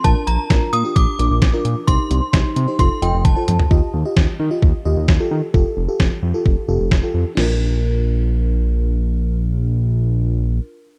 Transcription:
<<
  \new Staff \with { instrumentName = "Synth bell" } { \time 4/4 \key bes \major \tempo 4 = 131 a''8 bes''4 ees'''8 d'''2 | c'''2 c'''8 g''8 a''8. r16 | r1 | r1 |
r1 | r1 | }
  \new Staff \with { instrumentName = "FM electric piano" } { \time 4/4 \key bes \major <d' f' bes'>8. r16 <d' f' bes'>8 r16 <d' f' g'>8 r16 <d' f' bes'>8 r16 <d' f' bes'>8 r16 | <ees' g' c''>8. r16 <ees' g' c''>8 r16 <ees' g' c''>16 <f' a' c''>8 <f' a' ees''>8 r16 <f' a' c''>8 r16 | <f' g' ees''>8 r16 <f' g' ees''>8. r16 <f' g' ees''>8 r16 <f' g' ees''>8 r16 <f' g' a'>8 r16 | <f' g' a'>8 r16 <f' g' a'>8. r16 <f' g' a'>8 r16 <f' g' a'>8 r16 <f' g' a'>8 r16 |
<d' f' bes'>1~ | <d' f' bes'>1 | }
  \new Staff \with { instrumentName = "Analog synth bass" } { \clef bass \time 4/4 \key bes \major bes,,16 r16 bes,,16 r16 bes,,16 r16 bes,16 r16 bes,,16 r16 bes,,16 bes,,16 bes,,16 r16 bes,16 r16 | c,16 r16 c,16 r16 c,16 r16 c16 r16 f,,16 r16 f,,16 f,,16 f,,16 r16 f,16 r16 | ees,16 r16 ees,16 r16 ees,16 r16 ees16 r16 ees,16 r16 ees,16 ees,16 ees,16 r16 ees16 r16 | f,,16 r16 f,,16 r16 f,,16 r16 f,16 r16 f,,16 r16 f,,16 f,,16 f,,16 r16 f,16 r16 |
bes,,1~ | bes,,1 | }
  \new DrumStaff \with { instrumentName = "Drums" } \drummode { \time 4/4 <hh bd>8 hh8 <hh bd sn>8 hh8 <hh bd>8 hh8 <hh bd sn>8 hh8 | <hh bd>8 hh8 <hh bd sn>8 hh8 <hh bd>8 hh8 <hh bd tommh>8 <hh toml>16 tomfh16 | bd4 <bd sn>4 bd4 <bd sn>4 | bd4 <bd sn>4 bd4 <bd sn>4 |
<cymc sn>4 r4 r4 r4 | r4 r4 r4 r4 | }
>>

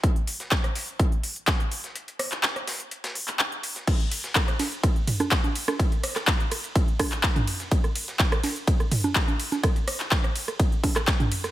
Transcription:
\new DrumStaff \with { instrumentName = "Drums" } \drummode { \time 4/4 \tempo 4 = 125 <hh bd>16 hh16 <hh hho>16 <hh sn>16 <hc hh bd sn>16 <hh ss>16 hho16 hh16 <hh bd>16 hh16 <hh hho>16 hh16 <hc hh bd sn>16 hh16 <hh hho>16 <hh sn>16 | hh16 hh16 <hh hho ss>16 <hc hh sn>16 <hc hh sn>16 <hh ss>16 <hh hho sn>16 hh16 hh16 <hh sn>16 hho16 <hc hh>16 <hc hh>16 hh16 <hh hho>16 <hh sn>16 | <cymc hh bd cymr ss>16 hh16 <hh hho cymr>16 <hh sn>16 <hc hh bd cymr ss sn>16 <hh ss>16 <cgho hho cymr sn>16 hh16 <hh bd cymr ss>16 hh16 <hh hho cymr toml>16 <cgho hh ss>16 <hc hh bd cymr sn>16 <cgho hh>16 <hh hho cymr>16 <cgho hh ss sn>16 | <hh bd cymr>16 hh16 <hh hho cymr ss>16 <hc hh ss sn>16 <hc hh bd cymr sn>16 hh16 <hh hho cymr ss>16 hh16 <hh bd cymr>16 hh16 <cgho hh hho bd cymr ss>16 <hc hh>16 <hc hh bd cymr sn>16 <cgho hh toml>16 <hh hho cymr>16 <hh sn>16 |
<hh bd cymr>16 <hh ss>16 <hh hho cymr>16 <hh sn>16 <hc hh bd cymr sn>16 <hh ss>16 <cgho hho cymr sn>16 hh16 <hh bd cymr>16 <hh ss>16 <hh hho cymr toml>16 <cgho hh>16 <hc hh bd cymr ss sn>16 <cgho hh>16 <hh hho cymr>16 <cgho hh sn>16 | <hh bd cymr ss>16 hh16 <hh hho cymr ss>16 <hc hh sn>16 <hc hh bd cymr ss sn>16 <hh ss>16 <hh hho cymr>16 <hh ss>16 <hh bd cymr>16 hh16 <cgho hh hho bd cymr>16 <hc hh ss>16 <hc hh bd cymr sn>16 <cgho hh toml>16 <hh hho cymr>16 <hh ss sn>16 | }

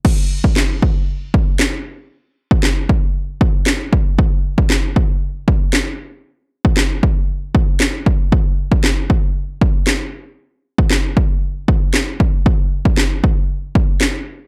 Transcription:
\new DrumStaff \with { instrumentName = "Drums" } \drummode { \time 4/4 \tempo 4 = 116 <cymc bd>8. bd16 <hc sn>8 bd8 r8 bd8 <hc sn>4 | r8. bd16 <hc sn>8 bd8 r8 bd8 <hc sn>8 bd8 | bd8. bd16 <hc sn>8 bd8 r8 bd8 <hc sn>4 | r8. bd16 <hc sn>8 bd8 r8 bd8 <hc sn>8 bd8 |
bd8. bd16 <hc sn>8 bd8 r8 bd8 <hc sn>4 | r8. bd16 <hc sn>8 bd8 r8 bd8 <hc sn>8 bd8 | bd8. bd16 <hc sn>8 bd8 r8 bd8 <hc sn>4 | }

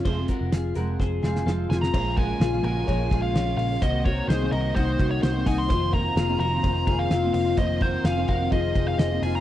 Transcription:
<<
  \new Staff \with { instrumentName = "Lead electric guitar" } { \time 4/4 \key f \phrygian \tempo 4 = 128 r2. r8 aes''16 bes''16~ | bes''8 aes''4 aes''4~ aes''16 f''8. f''8 | ees''8 des''8 c''8 ees''8 c''8. des''16 c''8 aes''16 c'''16~ | c'''8 bes''4 bes''4~ bes''16 f''8. f''8 |
ees''8 c''8 f''8 f''8 ees''8. f''16 ees''8 aes''16 bes''16 | }
  \new Staff \with { instrumentName = "Clean electric guitar" } { \time 4/4 \key f \phrygian <aes' c''>8 <ges' bes'>8 <f' aes'>8 <ges' bes'>8 <aes' c''>8 <f' aes'>8 <c' f'>4 | <aes' c''>8 <ges' bes'>8 <f' aes'>8 <ges' bes'>8 <bes' des''>8 <f' aes'>8 <des' f'>4 | <ges' c''>8 <ges' bes'>8 <ees' aes'>8 <ges' bes'>8 <ees' ges'>4. <ees' ges'>8 | <f' c''>8 <ges' bes'>8 <f' aes'>8 <ges' bes'>8 <f' c''>8 <f' aes'>8 <c' f'>4 |
<f' c''>8 <ges' bes'>8 <f' aes'>8 <ges' bes'>8 <f' aes'>4. <f' aes'>8 | }
  \new Staff \with { instrumentName = "String machine" } { \time 4/4 \key f \phrygian << { r1 | <des aes bes>1 | <ees bes c''>1~ | <ees bes c''>1~ |
<ees bes c''>1 | } \\ { r1 | f'1 | ges'1 | f'1 |
ees'1 | } >> }
  \new Staff \with { instrumentName = "Steel-string acoustic guitar" } { \time 4/4 \key f \phrygian <f aes c' f'>16 <aes c' f'>4~ <aes c' f'>16 <f aes c' f'>4 <f aes c' f'>8 <f aes c' f'>8 <f aes c' f'>8 | <f aes des' f'>8 <f aes des' f'>8. <bes, f aes des' f'>8. <f aes des' f'>8 <f aes des' f'>8. <aes des' f'>8. | <ees bes c' ges'>8 <ees bes c' ges'>8. <c ees bes c' ges'>8. <ees bes c' ges'>8 <ees bes c' ges'>8. <bes c' ges'>8. | <ees bes c' f'>8 <ees bes c' f'>8. <f, c ees bes c' f'>8. <ees bes c' f'>8 <ees bes c' f'>8. <ees bes c' f'>8. |
<ees bes c' f'>8 <ees bes c' f'>8. <f, c ees bes c' f'>8. <ees bes c' f'>8 <ees bes c' f'>8. <ees bes c' f'>8. | }
  \new Staff \with { instrumentName = "Picked electric bass" } { \clef bass \time 4/4 \key f \phrygian f,,8 r16 f,,16 f,,8 f,,8 f,,8 f,,8 f,,8 f,,8 | bes,,4 bes,,8 bes,,8 bes,,8 bes,,8 bes,,8 bes,,8 | c,4 c,8 c,8 c,8 c,8 c,8 c,8 | f,,4 f,,8 f,,8 f,,8 f,,8 f,,8 f,,8 |
f,,4 f,,8 f,,8 f,,8 f,,8 f,,8 f,,8 | }
  \new DrumStaff \with { instrumentName = "Drums" } \drummode { \time 4/4 <cymc bd>8 <hh bd>8 <hh sn>8 hh8 <bd sn>8 sn16 sn16 sn8 sn16 sn16 | <cymc bd>8 <bd cymr>8 <cymr sn>8 cymr8 <bd cymr>8 <bd cymr>8 <cymr sn>8 <hho cymr>8 | <hhp bd cymr>8 <bd cymr>8 <cymr sn>8 cymr8 <bd cymr>8 <bd cymr>8 <cymr sn>8 <hho bd cymr>8 | <hhp bd cymr>8 <bd cymr>8 <cymr sn>8 cymr8 <bd cymr>8 <bd cymr>8 <cymr sn>8 <hho cymr>8 |
<hhp bd cymr>8 <bd cymr>8 <cymr sn>8 <bd cymr>8 <bd cymr>8 <bd cymr>8 <cymr sn>8 <hho cymr>8 | }
>>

